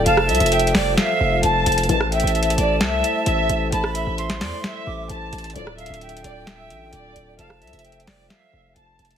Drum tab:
HH |x-----------x--x--x--x--x---x---x---o-----------x-----------------------x-----------x--x--x--x--|x-----------x---x---x---x---x---x---x-----------x-----------x-----------x-----------x-----------|x-----------x-----------x-----x-----o-----------x-----------------------x-----------x--x--x--x--|x-----------x---x---x---x---x---x---x-----------x-----------x-----------x-----------x-----------|
SD |------r-----------------------------o-----------o-----------------------------------------------|------r-----------------------------------------o-----------------------------------------------|------r-----------------------o-----o-----------o-----------------------------------------------|------r-----------------------------------------o-----------------------------------------------|

HH |x-----------x--x--x--x--x---x---x---o-----------x-----------------------x-----------x--x--x-----|
SD |------r-----------------------------o-----------o-----------------------------------------------|